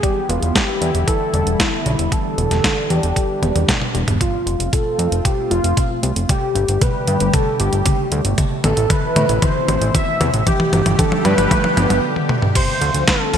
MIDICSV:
0, 0, Header, 1, 6, 480
1, 0, Start_track
1, 0, Tempo, 521739
1, 29, Time_signature, 4, 2, 24, 8
1, 12308, End_track
2, 0, Start_track
2, 0, Title_t, "Soft synth lead"
2, 0, Program_c, 0, 80
2, 27, Note_on_c, 0, 67, 110
2, 269, Note_on_c, 0, 65, 96
2, 282, Note_off_c, 0, 67, 0
2, 509, Note_on_c, 0, 67, 100
2, 523, Note_off_c, 0, 65, 0
2, 982, Note_off_c, 0, 67, 0
2, 988, Note_on_c, 0, 69, 108
2, 1468, Note_on_c, 0, 64, 92
2, 1482, Note_off_c, 0, 69, 0
2, 1948, Note_on_c, 0, 69, 109
2, 1962, Note_off_c, 0, 64, 0
2, 2668, Note_on_c, 0, 67, 94
2, 2682, Note_off_c, 0, 69, 0
2, 3389, Note_off_c, 0, 67, 0
2, 3870, Note_on_c, 0, 65, 101
2, 4347, Note_on_c, 0, 69, 108
2, 4361, Note_off_c, 0, 65, 0
2, 4826, Note_on_c, 0, 67, 101
2, 4840, Note_off_c, 0, 69, 0
2, 5062, Note_off_c, 0, 67, 0
2, 5067, Note_on_c, 0, 65, 88
2, 5515, Note_off_c, 0, 65, 0
2, 5794, Note_on_c, 0, 67, 106
2, 6271, Note_on_c, 0, 71, 114
2, 6285, Note_off_c, 0, 67, 0
2, 6751, Note_on_c, 0, 69, 103
2, 6764, Note_off_c, 0, 71, 0
2, 6984, Note_off_c, 0, 69, 0
2, 6989, Note_on_c, 0, 67, 87
2, 7436, Note_off_c, 0, 67, 0
2, 7953, Note_on_c, 0, 69, 90
2, 8189, Note_on_c, 0, 71, 101
2, 8203, Note_off_c, 0, 69, 0
2, 8669, Note_on_c, 0, 72, 110
2, 8683, Note_off_c, 0, 71, 0
2, 9145, Note_off_c, 0, 72, 0
2, 9151, Note_on_c, 0, 76, 116
2, 9485, Note_off_c, 0, 76, 0
2, 9628, Note_on_c, 0, 67, 105
2, 10108, Note_on_c, 0, 69, 98
2, 10122, Note_off_c, 0, 67, 0
2, 10344, Note_off_c, 0, 69, 0
2, 10349, Note_on_c, 0, 71, 96
2, 11033, Note_off_c, 0, 71, 0
2, 11552, Note_on_c, 0, 72, 120
2, 11997, Note_off_c, 0, 72, 0
2, 12033, Note_on_c, 0, 69, 106
2, 12308, Note_off_c, 0, 69, 0
2, 12308, End_track
3, 0, Start_track
3, 0, Title_t, "Analog synth pad"
3, 0, Program_c, 1, 89
3, 0, Note_on_c, 1, 59, 74
3, 29, Note_on_c, 1, 64, 88
3, 30, Note_on_c, 1, 50, 80
3, 30, Note_on_c, 1, 52, 72
3, 30, Note_on_c, 1, 55, 72
3, 1930, Note_off_c, 1, 64, 0
3, 1947, Note_on_c, 1, 62, 87
3, 3833, Note_off_c, 1, 50, 0
3, 3833, Note_off_c, 1, 52, 0
3, 3833, Note_off_c, 1, 55, 0
3, 3833, Note_off_c, 1, 59, 0
3, 3849, Note_off_c, 1, 62, 0
3, 3867, Note_on_c, 1, 60, 75
3, 3868, Note_on_c, 1, 57, 78
3, 3868, Note_on_c, 1, 65, 88
3, 5769, Note_off_c, 1, 60, 0
3, 5769, Note_off_c, 1, 65, 0
3, 5788, Note_on_c, 1, 67, 90
3, 5789, Note_on_c, 1, 47, 73
3, 5789, Note_on_c, 1, 50, 79
3, 5790, Note_on_c, 1, 55, 73
3, 7690, Note_off_c, 1, 50, 0
3, 7690, Note_off_c, 1, 55, 0
3, 7690, Note_off_c, 1, 67, 0
3, 7709, Note_on_c, 1, 52, 72
3, 7710, Note_on_c, 1, 48, 82
3, 7710, Note_on_c, 1, 64, 93
3, 9592, Note_off_c, 1, 57, 0
3, 9610, Note_off_c, 1, 48, 0
3, 9610, Note_off_c, 1, 52, 0
3, 9610, Note_off_c, 1, 64, 0
3, 9630, Note_on_c, 1, 50, 80
3, 9630, Note_on_c, 1, 55, 76
3, 9630, Note_on_c, 1, 57, 74
3, 9630, Note_on_c, 1, 67, 90
3, 11512, Note_off_c, 1, 47, 0
3, 11531, Note_off_c, 1, 50, 0
3, 11531, Note_off_c, 1, 55, 0
3, 11531, Note_off_c, 1, 57, 0
3, 11531, Note_off_c, 1, 67, 0
3, 11552, Note_on_c, 1, 53, 73
3, 11552, Note_on_c, 1, 60, 74
3, 11552, Note_on_c, 1, 65, 91
3, 11553, Note_on_c, 1, 50, 81
3, 11553, Note_on_c, 1, 57, 73
3, 12308, Note_off_c, 1, 50, 0
3, 12308, Note_off_c, 1, 53, 0
3, 12308, Note_off_c, 1, 57, 0
3, 12308, Note_off_c, 1, 60, 0
3, 12308, Note_off_c, 1, 65, 0
3, 12308, End_track
4, 0, Start_track
4, 0, Title_t, "Synth arpeggio sound"
4, 0, Program_c, 2, 84
4, 29, Note_on_c, 2, 55, 83
4, 207, Note_off_c, 2, 55, 0
4, 270, Note_on_c, 2, 59, 77
4, 498, Note_off_c, 2, 59, 0
4, 751, Note_on_c, 2, 55, 74
4, 928, Note_off_c, 2, 55, 0
4, 991, Note_on_c, 2, 52, 85
4, 1218, Note_off_c, 2, 52, 0
4, 1230, Note_on_c, 2, 50, 76
4, 1407, Note_off_c, 2, 50, 0
4, 1470, Note_on_c, 2, 47, 76
4, 1576, Note_off_c, 2, 47, 0
4, 1710, Note_on_c, 2, 50, 78
4, 1887, Note_off_c, 2, 50, 0
4, 2189, Note_on_c, 2, 47, 74
4, 2367, Note_off_c, 2, 47, 0
4, 2432, Note_on_c, 2, 50, 76
4, 2659, Note_off_c, 2, 50, 0
4, 2670, Note_on_c, 2, 52, 73
4, 2776, Note_off_c, 2, 52, 0
4, 2910, Note_on_c, 2, 55, 82
4, 3087, Note_off_c, 2, 55, 0
4, 3150, Note_on_c, 2, 59, 78
4, 3378, Note_off_c, 2, 59, 0
4, 3629, Note_on_c, 2, 55, 79
4, 3807, Note_off_c, 2, 55, 0
4, 4108, Note_on_c, 2, 48, 76
4, 4286, Note_off_c, 2, 48, 0
4, 4350, Note_on_c, 2, 53, 77
4, 4578, Note_off_c, 2, 53, 0
4, 4590, Note_on_c, 2, 57, 75
4, 4696, Note_off_c, 2, 57, 0
4, 4830, Note_on_c, 2, 60, 83
4, 5007, Note_off_c, 2, 60, 0
4, 5069, Note_on_c, 2, 65, 79
4, 5297, Note_off_c, 2, 65, 0
4, 5548, Note_on_c, 2, 60, 79
4, 5726, Note_off_c, 2, 60, 0
4, 5789, Note_on_c, 2, 55, 83
4, 6017, Note_off_c, 2, 55, 0
4, 6030, Note_on_c, 2, 50, 73
4, 6207, Note_off_c, 2, 50, 0
4, 6271, Note_on_c, 2, 47, 79
4, 6376, Note_off_c, 2, 47, 0
4, 6509, Note_on_c, 2, 50, 75
4, 6686, Note_off_c, 2, 50, 0
4, 6989, Note_on_c, 2, 47, 75
4, 7166, Note_off_c, 2, 47, 0
4, 7228, Note_on_c, 2, 50, 76
4, 7457, Note_off_c, 2, 50, 0
4, 7467, Note_on_c, 2, 55, 81
4, 7575, Note_off_c, 2, 55, 0
4, 7709, Note_on_c, 2, 57, 85
4, 7887, Note_off_c, 2, 57, 0
4, 7947, Note_on_c, 2, 59, 76
4, 8176, Note_off_c, 2, 59, 0
4, 8429, Note_on_c, 2, 57, 74
4, 8606, Note_off_c, 2, 57, 0
4, 8668, Note_on_c, 2, 52, 85
4, 8897, Note_off_c, 2, 52, 0
4, 8907, Note_on_c, 2, 48, 75
4, 9085, Note_off_c, 2, 48, 0
4, 9148, Note_on_c, 2, 47, 77
4, 9255, Note_off_c, 2, 47, 0
4, 9388, Note_on_c, 2, 48, 78
4, 9566, Note_off_c, 2, 48, 0
4, 9869, Note_on_c, 2, 47, 79
4, 10047, Note_off_c, 2, 47, 0
4, 10108, Note_on_c, 2, 50, 78
4, 10337, Note_off_c, 2, 50, 0
4, 10348, Note_on_c, 2, 55, 74
4, 10455, Note_off_c, 2, 55, 0
4, 10589, Note_on_c, 2, 57, 86
4, 10767, Note_off_c, 2, 57, 0
4, 10830, Note_on_c, 2, 59, 79
4, 11058, Note_off_c, 2, 59, 0
4, 11549, Note_on_c, 2, 48, 86
4, 11655, Note_off_c, 2, 48, 0
4, 12029, Note_on_c, 2, 50, 78
4, 12257, Note_off_c, 2, 50, 0
4, 12269, Note_on_c, 2, 53, 102
4, 12308, Note_off_c, 2, 53, 0
4, 12308, End_track
5, 0, Start_track
5, 0, Title_t, "Analog synth bass"
5, 0, Program_c, 3, 38
5, 269, Note_on_c, 3, 28, 98
5, 359, Note_off_c, 3, 28, 0
5, 390, Note_on_c, 3, 28, 83
5, 479, Note_off_c, 3, 28, 0
5, 750, Note_on_c, 3, 40, 94
5, 839, Note_off_c, 3, 40, 0
5, 870, Note_on_c, 3, 28, 77
5, 959, Note_off_c, 3, 28, 0
5, 1228, Note_on_c, 3, 28, 94
5, 1318, Note_off_c, 3, 28, 0
5, 1349, Note_on_c, 3, 28, 83
5, 1439, Note_off_c, 3, 28, 0
5, 1709, Note_on_c, 3, 35, 94
5, 1799, Note_off_c, 3, 35, 0
5, 1829, Note_on_c, 3, 28, 77
5, 1919, Note_off_c, 3, 28, 0
5, 2189, Note_on_c, 3, 28, 94
5, 2278, Note_off_c, 3, 28, 0
5, 2309, Note_on_c, 3, 28, 76
5, 2399, Note_off_c, 3, 28, 0
5, 2671, Note_on_c, 3, 40, 95
5, 2760, Note_off_c, 3, 40, 0
5, 2791, Note_on_c, 3, 28, 78
5, 2880, Note_off_c, 3, 28, 0
5, 3149, Note_on_c, 3, 28, 94
5, 3239, Note_off_c, 3, 28, 0
5, 3270, Note_on_c, 3, 28, 80
5, 3359, Note_off_c, 3, 28, 0
5, 3629, Note_on_c, 3, 28, 91
5, 3719, Note_off_c, 3, 28, 0
5, 3749, Note_on_c, 3, 28, 77
5, 3839, Note_off_c, 3, 28, 0
5, 4107, Note_on_c, 3, 29, 98
5, 4198, Note_off_c, 3, 29, 0
5, 4227, Note_on_c, 3, 29, 80
5, 4318, Note_off_c, 3, 29, 0
5, 4587, Note_on_c, 3, 41, 97
5, 4677, Note_off_c, 3, 41, 0
5, 4707, Note_on_c, 3, 29, 77
5, 4798, Note_off_c, 3, 29, 0
5, 5067, Note_on_c, 3, 29, 97
5, 5157, Note_off_c, 3, 29, 0
5, 5187, Note_on_c, 3, 29, 85
5, 5277, Note_off_c, 3, 29, 0
5, 5546, Note_on_c, 3, 36, 91
5, 5637, Note_off_c, 3, 36, 0
5, 5668, Note_on_c, 3, 29, 76
5, 5758, Note_off_c, 3, 29, 0
5, 6027, Note_on_c, 3, 31, 94
5, 6117, Note_off_c, 3, 31, 0
5, 6149, Note_on_c, 3, 31, 81
5, 6239, Note_off_c, 3, 31, 0
5, 6509, Note_on_c, 3, 43, 96
5, 6599, Note_off_c, 3, 43, 0
5, 6629, Note_on_c, 3, 31, 80
5, 6718, Note_off_c, 3, 31, 0
5, 6990, Note_on_c, 3, 31, 97
5, 7079, Note_off_c, 3, 31, 0
5, 7110, Note_on_c, 3, 31, 80
5, 7199, Note_off_c, 3, 31, 0
5, 7468, Note_on_c, 3, 38, 94
5, 7558, Note_off_c, 3, 38, 0
5, 7587, Note_on_c, 3, 31, 80
5, 7678, Note_off_c, 3, 31, 0
5, 7948, Note_on_c, 3, 33, 100
5, 8038, Note_off_c, 3, 33, 0
5, 8068, Note_on_c, 3, 33, 83
5, 8158, Note_off_c, 3, 33, 0
5, 8426, Note_on_c, 3, 45, 94
5, 8517, Note_off_c, 3, 45, 0
5, 8548, Note_on_c, 3, 33, 84
5, 8638, Note_off_c, 3, 33, 0
5, 8907, Note_on_c, 3, 33, 97
5, 8998, Note_off_c, 3, 33, 0
5, 9026, Note_on_c, 3, 33, 84
5, 9117, Note_off_c, 3, 33, 0
5, 9389, Note_on_c, 3, 40, 99
5, 9479, Note_off_c, 3, 40, 0
5, 9508, Note_on_c, 3, 33, 81
5, 9598, Note_off_c, 3, 33, 0
5, 9866, Note_on_c, 3, 31, 97
5, 9957, Note_off_c, 3, 31, 0
5, 9988, Note_on_c, 3, 31, 81
5, 10078, Note_off_c, 3, 31, 0
5, 10348, Note_on_c, 3, 43, 97
5, 10438, Note_off_c, 3, 43, 0
5, 10467, Note_on_c, 3, 31, 83
5, 10558, Note_off_c, 3, 31, 0
5, 10830, Note_on_c, 3, 31, 99
5, 10919, Note_off_c, 3, 31, 0
5, 10949, Note_on_c, 3, 31, 82
5, 11039, Note_off_c, 3, 31, 0
5, 11788, Note_on_c, 3, 38, 94
5, 11878, Note_off_c, 3, 38, 0
5, 11908, Note_on_c, 3, 38, 82
5, 11998, Note_off_c, 3, 38, 0
5, 12269, Note_on_c, 3, 26, 96
5, 12308, Note_off_c, 3, 26, 0
5, 12308, End_track
6, 0, Start_track
6, 0, Title_t, "Drums"
6, 31, Note_on_c, 9, 36, 108
6, 31, Note_on_c, 9, 42, 87
6, 123, Note_off_c, 9, 36, 0
6, 123, Note_off_c, 9, 42, 0
6, 272, Note_on_c, 9, 42, 67
6, 364, Note_off_c, 9, 42, 0
6, 391, Note_on_c, 9, 42, 63
6, 483, Note_off_c, 9, 42, 0
6, 510, Note_on_c, 9, 36, 113
6, 512, Note_on_c, 9, 38, 111
6, 512, Note_on_c, 9, 42, 89
6, 602, Note_off_c, 9, 36, 0
6, 604, Note_off_c, 9, 38, 0
6, 604, Note_off_c, 9, 42, 0
6, 751, Note_on_c, 9, 42, 64
6, 843, Note_off_c, 9, 42, 0
6, 871, Note_on_c, 9, 42, 61
6, 963, Note_off_c, 9, 42, 0
6, 990, Note_on_c, 9, 36, 107
6, 991, Note_on_c, 9, 42, 84
6, 1082, Note_off_c, 9, 36, 0
6, 1083, Note_off_c, 9, 42, 0
6, 1230, Note_on_c, 9, 42, 62
6, 1322, Note_off_c, 9, 42, 0
6, 1351, Note_on_c, 9, 42, 63
6, 1443, Note_off_c, 9, 42, 0
6, 1470, Note_on_c, 9, 36, 114
6, 1471, Note_on_c, 9, 38, 112
6, 1471, Note_on_c, 9, 42, 89
6, 1562, Note_off_c, 9, 36, 0
6, 1563, Note_off_c, 9, 38, 0
6, 1563, Note_off_c, 9, 42, 0
6, 1711, Note_on_c, 9, 42, 62
6, 1803, Note_off_c, 9, 42, 0
6, 1831, Note_on_c, 9, 42, 63
6, 1923, Note_off_c, 9, 42, 0
6, 1950, Note_on_c, 9, 36, 111
6, 1951, Note_on_c, 9, 42, 92
6, 2042, Note_off_c, 9, 36, 0
6, 2043, Note_off_c, 9, 42, 0
6, 2192, Note_on_c, 9, 42, 67
6, 2284, Note_off_c, 9, 42, 0
6, 2311, Note_on_c, 9, 38, 33
6, 2311, Note_on_c, 9, 42, 66
6, 2403, Note_off_c, 9, 38, 0
6, 2403, Note_off_c, 9, 42, 0
6, 2430, Note_on_c, 9, 36, 115
6, 2431, Note_on_c, 9, 38, 114
6, 2431, Note_on_c, 9, 42, 89
6, 2522, Note_off_c, 9, 36, 0
6, 2523, Note_off_c, 9, 38, 0
6, 2523, Note_off_c, 9, 42, 0
6, 2671, Note_on_c, 9, 42, 66
6, 2763, Note_off_c, 9, 42, 0
6, 2791, Note_on_c, 9, 42, 64
6, 2883, Note_off_c, 9, 42, 0
6, 2910, Note_on_c, 9, 36, 107
6, 2912, Note_on_c, 9, 42, 87
6, 3002, Note_off_c, 9, 36, 0
6, 3004, Note_off_c, 9, 42, 0
6, 3152, Note_on_c, 9, 42, 67
6, 3152, Note_on_c, 9, 48, 57
6, 3244, Note_off_c, 9, 42, 0
6, 3244, Note_off_c, 9, 48, 0
6, 3272, Note_on_c, 9, 42, 62
6, 3272, Note_on_c, 9, 48, 55
6, 3364, Note_off_c, 9, 42, 0
6, 3364, Note_off_c, 9, 48, 0
6, 3390, Note_on_c, 9, 36, 113
6, 3392, Note_on_c, 9, 38, 113
6, 3392, Note_on_c, 9, 42, 97
6, 3392, Note_on_c, 9, 47, 77
6, 3482, Note_off_c, 9, 36, 0
6, 3484, Note_off_c, 9, 38, 0
6, 3484, Note_off_c, 9, 42, 0
6, 3484, Note_off_c, 9, 47, 0
6, 3510, Note_on_c, 9, 47, 73
6, 3602, Note_off_c, 9, 47, 0
6, 3631, Note_on_c, 9, 42, 68
6, 3723, Note_off_c, 9, 42, 0
6, 3751, Note_on_c, 9, 42, 67
6, 3751, Note_on_c, 9, 45, 86
6, 3843, Note_off_c, 9, 42, 0
6, 3843, Note_off_c, 9, 45, 0
6, 3870, Note_on_c, 9, 36, 96
6, 3871, Note_on_c, 9, 42, 95
6, 3871, Note_on_c, 9, 47, 46
6, 3962, Note_off_c, 9, 36, 0
6, 3963, Note_off_c, 9, 42, 0
6, 3963, Note_off_c, 9, 47, 0
6, 4111, Note_on_c, 9, 42, 70
6, 4203, Note_off_c, 9, 42, 0
6, 4232, Note_on_c, 9, 42, 68
6, 4324, Note_off_c, 9, 42, 0
6, 4350, Note_on_c, 9, 36, 98
6, 4352, Note_on_c, 9, 42, 92
6, 4352, Note_on_c, 9, 47, 49
6, 4442, Note_off_c, 9, 36, 0
6, 4444, Note_off_c, 9, 42, 0
6, 4444, Note_off_c, 9, 47, 0
6, 4592, Note_on_c, 9, 42, 70
6, 4684, Note_off_c, 9, 42, 0
6, 4712, Note_on_c, 9, 42, 66
6, 4804, Note_off_c, 9, 42, 0
6, 4830, Note_on_c, 9, 36, 93
6, 4832, Note_on_c, 9, 42, 93
6, 4832, Note_on_c, 9, 47, 48
6, 4922, Note_off_c, 9, 36, 0
6, 4924, Note_off_c, 9, 42, 0
6, 4924, Note_off_c, 9, 47, 0
6, 5071, Note_on_c, 9, 42, 67
6, 5163, Note_off_c, 9, 42, 0
6, 5191, Note_on_c, 9, 42, 65
6, 5283, Note_off_c, 9, 42, 0
6, 5310, Note_on_c, 9, 36, 95
6, 5311, Note_on_c, 9, 42, 93
6, 5311, Note_on_c, 9, 47, 56
6, 5402, Note_off_c, 9, 36, 0
6, 5403, Note_off_c, 9, 42, 0
6, 5403, Note_off_c, 9, 47, 0
6, 5550, Note_on_c, 9, 42, 71
6, 5642, Note_off_c, 9, 42, 0
6, 5670, Note_on_c, 9, 42, 66
6, 5762, Note_off_c, 9, 42, 0
6, 5790, Note_on_c, 9, 36, 92
6, 5790, Note_on_c, 9, 42, 97
6, 5790, Note_on_c, 9, 47, 58
6, 5882, Note_off_c, 9, 36, 0
6, 5882, Note_off_c, 9, 42, 0
6, 5882, Note_off_c, 9, 47, 0
6, 6031, Note_on_c, 9, 42, 69
6, 6123, Note_off_c, 9, 42, 0
6, 6150, Note_on_c, 9, 42, 67
6, 6242, Note_off_c, 9, 42, 0
6, 6270, Note_on_c, 9, 36, 97
6, 6270, Note_on_c, 9, 42, 97
6, 6270, Note_on_c, 9, 47, 61
6, 6362, Note_off_c, 9, 36, 0
6, 6362, Note_off_c, 9, 42, 0
6, 6362, Note_off_c, 9, 47, 0
6, 6509, Note_on_c, 9, 42, 70
6, 6601, Note_off_c, 9, 42, 0
6, 6627, Note_on_c, 9, 42, 69
6, 6719, Note_off_c, 9, 42, 0
6, 6748, Note_on_c, 9, 42, 92
6, 6748, Note_on_c, 9, 47, 65
6, 6750, Note_on_c, 9, 36, 97
6, 6840, Note_off_c, 9, 42, 0
6, 6840, Note_off_c, 9, 47, 0
6, 6842, Note_off_c, 9, 36, 0
6, 6988, Note_on_c, 9, 42, 67
6, 7080, Note_off_c, 9, 42, 0
6, 7108, Note_on_c, 9, 42, 65
6, 7200, Note_off_c, 9, 42, 0
6, 7227, Note_on_c, 9, 42, 98
6, 7227, Note_on_c, 9, 47, 72
6, 7230, Note_on_c, 9, 36, 99
6, 7319, Note_off_c, 9, 42, 0
6, 7319, Note_off_c, 9, 47, 0
6, 7322, Note_off_c, 9, 36, 0
6, 7467, Note_on_c, 9, 42, 72
6, 7559, Note_off_c, 9, 42, 0
6, 7587, Note_on_c, 9, 42, 67
6, 7679, Note_off_c, 9, 42, 0
6, 7708, Note_on_c, 9, 42, 94
6, 7708, Note_on_c, 9, 47, 72
6, 7710, Note_on_c, 9, 36, 93
6, 7800, Note_off_c, 9, 42, 0
6, 7800, Note_off_c, 9, 47, 0
6, 7802, Note_off_c, 9, 36, 0
6, 7948, Note_on_c, 9, 42, 68
6, 7948, Note_on_c, 9, 47, 78
6, 8040, Note_off_c, 9, 42, 0
6, 8040, Note_off_c, 9, 47, 0
6, 8068, Note_on_c, 9, 42, 67
6, 8160, Note_off_c, 9, 42, 0
6, 8188, Note_on_c, 9, 42, 96
6, 8188, Note_on_c, 9, 47, 80
6, 8189, Note_on_c, 9, 36, 97
6, 8280, Note_off_c, 9, 42, 0
6, 8280, Note_off_c, 9, 47, 0
6, 8281, Note_off_c, 9, 36, 0
6, 8429, Note_on_c, 9, 42, 68
6, 8429, Note_on_c, 9, 47, 80
6, 8521, Note_off_c, 9, 42, 0
6, 8521, Note_off_c, 9, 47, 0
6, 8549, Note_on_c, 9, 42, 67
6, 8641, Note_off_c, 9, 42, 0
6, 8669, Note_on_c, 9, 42, 90
6, 8669, Note_on_c, 9, 47, 77
6, 8670, Note_on_c, 9, 36, 95
6, 8761, Note_off_c, 9, 42, 0
6, 8761, Note_off_c, 9, 47, 0
6, 8762, Note_off_c, 9, 36, 0
6, 8910, Note_on_c, 9, 42, 66
6, 8910, Note_on_c, 9, 47, 83
6, 9002, Note_off_c, 9, 42, 0
6, 9002, Note_off_c, 9, 47, 0
6, 9030, Note_on_c, 9, 42, 61
6, 9122, Note_off_c, 9, 42, 0
6, 9150, Note_on_c, 9, 36, 99
6, 9151, Note_on_c, 9, 42, 97
6, 9151, Note_on_c, 9, 47, 86
6, 9242, Note_off_c, 9, 36, 0
6, 9243, Note_off_c, 9, 42, 0
6, 9243, Note_off_c, 9, 47, 0
6, 9390, Note_on_c, 9, 42, 69
6, 9390, Note_on_c, 9, 47, 91
6, 9482, Note_off_c, 9, 42, 0
6, 9482, Note_off_c, 9, 47, 0
6, 9509, Note_on_c, 9, 42, 64
6, 9601, Note_off_c, 9, 42, 0
6, 9629, Note_on_c, 9, 42, 89
6, 9629, Note_on_c, 9, 47, 94
6, 9630, Note_on_c, 9, 36, 98
6, 9721, Note_off_c, 9, 42, 0
6, 9721, Note_off_c, 9, 47, 0
6, 9722, Note_off_c, 9, 36, 0
6, 9750, Note_on_c, 9, 47, 84
6, 9842, Note_off_c, 9, 47, 0
6, 9870, Note_on_c, 9, 42, 67
6, 9870, Note_on_c, 9, 47, 92
6, 9962, Note_off_c, 9, 42, 0
6, 9962, Note_off_c, 9, 47, 0
6, 9991, Note_on_c, 9, 42, 63
6, 9991, Note_on_c, 9, 47, 84
6, 10083, Note_off_c, 9, 42, 0
6, 10083, Note_off_c, 9, 47, 0
6, 10109, Note_on_c, 9, 36, 100
6, 10111, Note_on_c, 9, 42, 95
6, 10111, Note_on_c, 9, 47, 93
6, 10201, Note_off_c, 9, 36, 0
6, 10203, Note_off_c, 9, 42, 0
6, 10203, Note_off_c, 9, 47, 0
6, 10230, Note_on_c, 9, 47, 86
6, 10322, Note_off_c, 9, 47, 0
6, 10350, Note_on_c, 9, 42, 67
6, 10350, Note_on_c, 9, 47, 99
6, 10442, Note_off_c, 9, 42, 0
6, 10442, Note_off_c, 9, 47, 0
6, 10470, Note_on_c, 9, 42, 62
6, 10470, Note_on_c, 9, 47, 87
6, 10562, Note_off_c, 9, 42, 0
6, 10562, Note_off_c, 9, 47, 0
6, 10589, Note_on_c, 9, 36, 97
6, 10591, Note_on_c, 9, 42, 87
6, 10591, Note_on_c, 9, 47, 100
6, 10681, Note_off_c, 9, 36, 0
6, 10683, Note_off_c, 9, 42, 0
6, 10683, Note_off_c, 9, 47, 0
6, 10710, Note_on_c, 9, 47, 88
6, 10802, Note_off_c, 9, 47, 0
6, 10830, Note_on_c, 9, 42, 64
6, 10830, Note_on_c, 9, 47, 101
6, 10922, Note_off_c, 9, 42, 0
6, 10922, Note_off_c, 9, 47, 0
6, 10950, Note_on_c, 9, 42, 63
6, 10950, Note_on_c, 9, 47, 88
6, 11042, Note_off_c, 9, 42, 0
6, 11042, Note_off_c, 9, 47, 0
6, 11190, Note_on_c, 9, 48, 53
6, 11282, Note_off_c, 9, 48, 0
6, 11310, Note_on_c, 9, 47, 78
6, 11402, Note_off_c, 9, 47, 0
6, 11430, Note_on_c, 9, 45, 81
6, 11522, Note_off_c, 9, 45, 0
6, 11550, Note_on_c, 9, 36, 118
6, 11551, Note_on_c, 9, 42, 98
6, 11551, Note_on_c, 9, 49, 103
6, 11642, Note_off_c, 9, 36, 0
6, 11643, Note_off_c, 9, 42, 0
6, 11643, Note_off_c, 9, 49, 0
6, 11790, Note_on_c, 9, 42, 71
6, 11882, Note_off_c, 9, 42, 0
6, 11909, Note_on_c, 9, 42, 67
6, 12001, Note_off_c, 9, 42, 0
6, 12029, Note_on_c, 9, 38, 124
6, 12029, Note_on_c, 9, 42, 98
6, 12030, Note_on_c, 9, 36, 125
6, 12121, Note_off_c, 9, 38, 0
6, 12121, Note_off_c, 9, 42, 0
6, 12122, Note_off_c, 9, 36, 0
6, 12269, Note_on_c, 9, 46, 82
6, 12308, Note_off_c, 9, 46, 0
6, 12308, End_track
0, 0, End_of_file